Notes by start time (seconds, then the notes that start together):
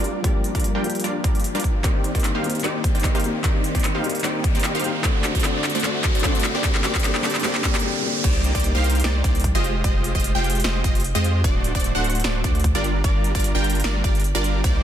Already playing: G1 G3 D4 F4 A#4 D5, riser
0.04 closed hi-hat
0.22 G1 F3 G3 A#3 D4 F4 G4 A#4 D5, kick, closed hi-hat
0.44 closed hi-hat
0.55 G3 D4 F4 A#4 D5, kick, closed hi-hat
0.60 closed hi-hat
0.64 closed hi-hat
0.75 G1 G3 D4 F4 A#4 G5
0.82 F3 G3 A#3 D4, closed hi-hat
0.86 G4, closed hi-hat
0.95 closed hi-hat
1.00 closed hi-hat
1.04 G3 D4 F4 A#4 D5, closed hi-hat
1.24 G1 G3 D4 F4 A#4 D5, kick, closed hi-hat
1.35 closed hi-hat
1.40 closed hi-hat
1.44 closed hi-hat
1.55 G2 G3 D4 F4 A#4 D5, closed hi-hat
1.60 closed hi-hat
1.64 kick, closed hi-hat
1.82 C2 D#3 A#3 C4 D4 D#4 G4 C5 D5, kick, clap, closed hi-hat
2.04 closed hi-hat
2.15 C2 A#3 D#4 G4 C5 D5, kick, closed hi-hat
2.20 closed hi-hat
2.24 clap, closed hi-hat
2.35 C2 A#3 D#4 G4 C5 F5
2.42 D#3 A#3 C4 D4, closed hi-hat
2.46 G4, closed hi-hat
2.55 closed hi-hat
2.60 D#3 A#3, closed hi-hat
2.64 C2 A#3 C4 D4 D#4 G4 C5 D5, clap, closed hi-hat
2.84 kick, closed hi-hat
2.95 C2 A#3 D#4 G4 C5 D5, closed hi-hat
3.00 closed hi-hat
3.04 kick, clap, closed hi-hat
3.15 C2 A#3 D#4 G4 C5 F5, closed hi-hat
3.20 D#3 A#3, closed hi-hat
3.24 C4 D4 G4, closed hi-hat
3.42 D#3 A#3 C4 D4 D#4 G4 C5 D5, kick, clap, closed hi-hat
3.46 G4
3.64 closed hi-hat
3.75 A#3 D#4 G4 C5 D5, kick, closed hi-hat
3.79 closed hi-hat
3.84 clap, closed hi-hat
3.95 A#3 D#4 G4 C5 F5
4.02 D#3 A#3 C4 D4, closed hi-hat
4.06 G4, closed hi-hat
4.15 closed hi-hat
4.20 D#3 A#3, closed hi-hat
4.24 A#3 C4 D4 D#4 G4 C5 D5, clap, closed hi-hat
4.44 kick, closed hi-hat
4.55 A#3 D#4 G4 C5 D5, closed hi-hat
4.60 closed hi-hat
4.64 clap, closed hi-hat
4.75 A#3 D#4 G4 C5 F5, closed hi-hat
4.80 D#3 A#3, closed hi-hat
4.84 C4 D4 G4, closed hi-hat
5.02 D3 A3 C4 D4 F#4 C5 D5, kick, clap, closed hi-hat
5.24 clap, closed hi-hat
5.35 A3 D4 F#4 C5 D5, kick, closed hi-hat
5.40 D3 A3, closed hi-hat
5.44 A3 C4 D4 F#4 C5 D5, clap, closed hi-hat
5.64 clap, closed hi-hat
5.70 closed hi-hat
5.75 A3 D4 F#4 C5 D5, closed hi-hat
5.80 D3 A3, closed hi-hat
5.84 A3 C4 D4 F#4 C5 D5, clap, closed hi-hat
6.04 kick, clap, closed hi-hat
6.15 A3 D4 F#4 C5 D5, closed hi-hat
6.19 D3 A3, closed hi-hat
6.24 D2 A3 C4 D4 F#4 C5 D5, kick, clap, closed hi-hat
6.35 closed hi-hat
6.40 closed hi-hat
6.44 clap, closed hi-hat
6.55 A#3 D4 G4 C5 D5
6.62 D3 A#3 C4 D4 G4 C5 D5, kick, clap, closed hi-hat
6.75 clap
6.82 D3 A#3 C4 D4 G4 C5 D5, clap, closed hi-hat
6.95 kick, clap, closed hi-hat
7.00 D3 A#3, closed hi-hat
7.04 A#3 C4 D4 G4 C5 D5, clap, closed hi-hat
7.15 clap
7.22 D3 A#3 C4 D4 G4 C5 D5, clap, closed hi-hat
7.26 G4, closed hi-hat
7.35 clap, closed hi-hat
7.40 D3 A#3, closed hi-hat
7.44 A#3 C4 D4 G4 C5 D5, clap, closed hi-hat
7.55 clap
7.62 D3 A#3 C4 D4 G4 C5 D5, kick, clap, closed hi-hat
7.66 G4
7.75 clap, closed hi-hat
7.80 D3 A#3, closed hi-hat
7.84 C4 D4 G4
8.02 D3 A#3 C4 D4
8.06 G4
8.24 C2 A#3 D#4 G4 C5 D5, kick, closed hi-hat, crash
8.44 closed hi-hat
8.55 C2 A#3 D#4 G4 C5 D5, kick, closed hi-hat
8.60 closed hi-hat
8.64 closed hi-hat
8.75 C2 A#3 D#4 G4 C5 F5
8.84 closed hi-hat
8.90 closed hi-hat
8.95 closed hi-hat
9.00 closed hi-hat
9.04 C2 A#3 D#4 G4 C5 D5, snare
9.24 C2 A#3 D#4 G4 C5 D5, kick, closed hi-hat
9.35 closed hi-hat
9.40 closed hi-hat
9.44 kick, closed hi-hat
9.55 F1 G#3 F4 G4 C5 D#5, closed hi-hat
9.64 closed hi-hat
9.84 F1 G#3 F4 G4 C5 D#5, kick, closed hi-hat
10.04 closed hi-hat
10.15 F1 G#3 F4 G4 C5 D#5, kick, closed hi-hat
10.20 closed hi-hat
10.24 closed hi-hat
10.35 F1 G#3 F4 G4 C5 G5
10.44 closed hi-hat
10.50 closed hi-hat
10.55 closed hi-hat
10.60 closed hi-hat
10.64 F1 G#3 F4 G4 C5 D#5, snare
10.84 F1 G#3 F4 G4 C5 D#5, kick, closed hi-hat
10.95 closed hi-hat
11.00 closed hi-hat
11.04 closed hi-hat
11.15 F2 G#3 F4 G4 C5 D#5, closed hi-hat
11.24 closed hi-hat
11.44 D1 A3 D4 F#4 C5 D5, kick, closed hi-hat
11.64 closed hi-hat
11.75 D1 A3 D4 F#4 C5 D5, kick, closed hi-hat
11.80 closed hi-hat
11.84 closed hi-hat
11.95 D1 A3 D4 F#4 C5 F#5
12.04 closed hi-hat
12.10 closed hi-hat
12.15 closed hi-hat
12.20 closed hi-hat
12.24 D1 A3 D4 F#4 C5 D5, snare, closed hi-hat
12.44 D2 A3 D4 F#4 C5 D5, kick, closed hi-hat
12.55 closed hi-hat
12.60 closed hi-hat
12.64 kick, closed hi-hat
12.75 G1 G3 D4 F4 A#4 D5, closed hi-hat
12.84 closed hi-hat
13.04 G1 G3 D4 F4 A#4 D5, kick, closed hi-hat
13.24 closed hi-hat
13.35 G1 G3 D4 F4 A#4 D5, kick, closed hi-hat
13.40 closed hi-hat
13.44 closed hi-hat
13.55 G1 G3 D4 F4 A#4 G5
13.64 closed hi-hat
13.70 closed hi-hat
13.75 closed hi-hat
13.80 closed hi-hat
13.84 G1 G3 D4 F4 A#4 D5, snare, closed hi-hat
14.04 G1 G3 D4 F4 A#4 D5, kick, closed hi-hat
14.15 closed hi-hat
14.20 closed hi-hat
14.24 closed hi-hat
14.35 G1 G3 D4 F4 A#4 D5, closed hi-hat
14.44 closed hi-hat
14.64 C2 A#3 D#4 G4 C5 D5, kick, closed hi-hat